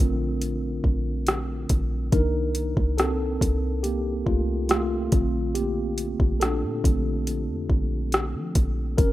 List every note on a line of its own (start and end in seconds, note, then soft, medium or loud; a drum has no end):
0.00 0.81 A#1 loud
0.00 2.15 D3 medium
0.00 2.15 A3 medium
0.00 2.14 C4 medium
0.00 2.14 D4 medium
0.00 1.22 F4 medium
0.00 2.14 A4 soft
0.00 2.12 A#4 loud
0.00 closed hi-hat medium
0.42 closed hi-hat medium
0.84 1.66 A#1 loud
0.84 kick medium
1.27 cross-stick loud
1.27 closed hi-hat medium
1.69 2.11 A#1 loud
1.69 kick medium
1.69 closed hi-hat medium
2.12 2.74 C2 loud
2.12 5.09 D#3 medium
2.12 3.84 A#3 medium
2.12 5.09 D4 medium
2.12 2.95 D#4 medium
2.12 3.01 A#4 loud
2.12 kick loud
2.12 closed hi-hat medium
2.55 closed hi-hat medium
2.77 3.39 C2 loud
2.77 kick medium
2.98 3.81 C4 medium
2.98 3.80 A4 loud
2.98 cross-stick loud
2.98 closed hi-hat medium
3.41 4.24 C2 loud
3.41 kick loud
3.41 closed hi-hat medium
3.83 4.25 A#3 medium
3.83 4.23 G4 medium
3.83 closed hi-hat medium
4.26 5.09 C2 loud
4.26 4.67 A3 medium
4.26 4.68 F4 medium
4.26 kick medium
4.69 5.12 A3 medium
4.69 5.58 F4 medium
4.69 cross-stick loud
4.69 closed hi-hat medium
5.12 6.16 A#1 loud
5.12 6.83 D3 medium
5.12 6.83 A3 soft
5.12 6.84 C4 medium
5.12 kick loud
5.12 closed hi-hat medium
5.54 6.38 A#3 medium
5.54 6.43 G4 medium
5.54 closed hi-hat medium
5.98 closed hi-hat medium
6.20 6.65 A#1 loud
6.20 kick medium
6.40 8.52 D4 medium
6.40 8.51 A4 medium
6.40 cross-stick loud
6.40 closed hi-hat medium
6.63 6.83 A#2 loud
6.84 7.50 A#1 loud
6.84 7.23 D3 soft
6.84 7.23 A3 soft
6.84 7.23 C4 medium
6.84 kick medium
6.84 closed hi-hat medium
7.27 closed hi-hat medium
7.49 7.69 F2 medium
7.70 8.36 A#1 loud
7.70 kick medium
8.12 cross-stick loud
8.12 closed hi-hat medium
8.34 8.55 F3 medium
8.55 8.97 A#1 loud
8.55 kick medium
8.55 closed hi-hat medium
8.98 9.13 F#1 loud
8.98 9.13 C#4 medium
8.98 9.13 A#4 loud
8.98 kick loud
8.98 closed hi-hat medium